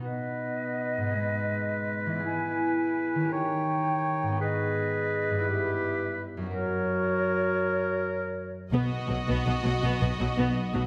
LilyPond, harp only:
\new Staff \with { instrumentName = "Harp" } { \time 12/8 \key b \major \tempo 4. = 110 << { r1. | r1. | r1. | r1. |
b,8 dis'8 fis'8 b'8 dis''8 b'8 fis8 dis'8 fis'8 b'8 dis''8 b'8 | } \\ { <b, b dis' fis'>2. <gis, b dis' gis'>2. | <e b e' gis'>2. <dis cis' g' ais'>2. | <gis, b dis' b'>2. <g, b e' b'>2. | <fis, cis' fis' ais'>1.~ |
<fis, cis' fis' ais'>1. | } >> }